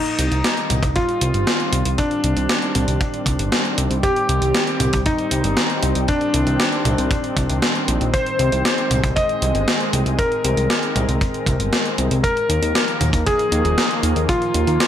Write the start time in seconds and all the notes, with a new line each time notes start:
Already playing: D#3 G3 C4 D#4
0.06 closed hi-hat
0.19 C2, closed hi-hat
0.31 C2, closed hi-hat
0.44 snare, closed hi-hat
0.57 closed hi-hat
0.70 C2, closed hi-hat, mid tom
0.83 C2, kick, closed hi-hat
0.96 F4, kick, closed hi-hat
1.09 closed hi-hat
1.21 C2, closed hi-hat
1.34 G1, closed hi-hat
1.47 snare, closed hi-hat
1.60 closed hi-hat
1.72 C2, closed hi-hat
1.85 C2, closed hi-hat
1.98 D4, kick, closed hi-hat
2.11 closed hi-hat
2.24 C2, closed hi-hat
2.37 C2, closed hi-hat
2.49 snare, closed hi-hat
2.62 closed hi-hat
2.75 C2, closed hi-hat, mid tom
2.88 C2, closed hi-hat
3.01 kick, closed hi-hat
3.14 closed hi-hat
3.26 C2, kick, closed hi-hat
3.39 G1, closed hi-hat
3.52 snare, closed hi-hat
3.65 closed hi-hat
3.78 C2, closed hi-hat
3.90 C2, closed hi-hat
4.03 G4, kick, closed hi-hat
4.16 closed hi-hat
4.29 C2, closed hi-hat
4.42 C2, closed hi-hat
4.55 snare, closed hi-hat
4.67 closed hi-hat
4.80 C2, closed hi-hat, mid tom
4.93 C2, kick, closed hi-hat
5.06 D#4, kick, closed hi-hat
5.18 closed hi-hat
5.31 C2, closed hi-hat
5.44 G1, closed hi-hat
5.57 snare, closed hi-hat
5.70 closed hi-hat
5.83 C2, closed hi-hat
5.95 C2, closed hi-hat
6.08 D4, kick, closed hi-hat
6.21 closed hi-hat
6.34 C2, closed hi-hat
6.47 C2, closed hi-hat
6.60 snare, closed hi-hat
6.72 closed hi-hat
6.85 C2, closed hi-hat, mid tom
6.98 C2, closed hi-hat
7.11 kick, closed hi-hat
7.24 closed hi-hat
7.37 C2, kick, closed hi-hat
7.50 C2, closed hi-hat
7.62 snare, closed hi-hat
7.75 closed hi-hat
7.88 A#1, closed hi-hat
8.01 A#1, closed hi-hat
8.13 G#3 C5, kick, closed hi-hat
8.26 closed hi-hat
8.39 C2, closed hi-hat
8.52 C2, closed hi-hat
8.65 snare, closed hi-hat
8.78 closed hi-hat
8.91 C2, closed hi-hat, mid tom
9.04 C2, kick, closed hi-hat
9.16 D#5, kick, closed hi-hat
9.29 closed hi-hat
9.42 C2, closed hi-hat
9.55 G1, closed hi-hat
9.68 snare, closed hi-hat
9.80 closed hi-hat
9.93 C2, closed hi-hat
10.06 C2, closed hi-hat
10.19 A#4, kick, closed hi-hat
10.32 closed hi-hat
10.44 C2, closed hi-hat
10.57 C2, closed hi-hat
10.70 snare, closed hi-hat
10.83 closed hi-hat
10.96 C2, closed hi-hat, mid tom
11.09 C2, closed hi-hat
11.21 kick, closed hi-hat
11.34 closed hi-hat
11.46 C2, kick, closed hi-hat
11.60 G1, closed hi-hat
11.73 snare, closed hi-hat
11.86 closed hi-hat
11.98 C2, closed hi-hat
12.11 C2, closed hi-hat
12.24 D#3 F3 A#3 A#4, kick, closed hi-hat
12.37 closed hi-hat
12.49 D#2, closed hi-hat
12.62 D#2, closed hi-hat
12.75 snare, closed hi-hat
12.88 closed hi-hat
13.01 D#2, closed hi-hat, mid tom
13.13 D#2, kick, closed hi-hat
13.26 G#4, kick, closed hi-hat
13.39 closed hi-hat
13.52 D#2, closed hi-hat
13.65 D#1, closed hi-hat
13.78 snare, closed hi-hat
13.91 closed hi-hat
14.03 D#2, closed hi-hat
14.16 D#2, closed hi-hat
14.29 F4, kick, closed hi-hat
14.42 closed hi-hat
14.54 D#2, closed hi-hat
14.67 D#2, closed hi-hat
14.80 snare, closed hi-hat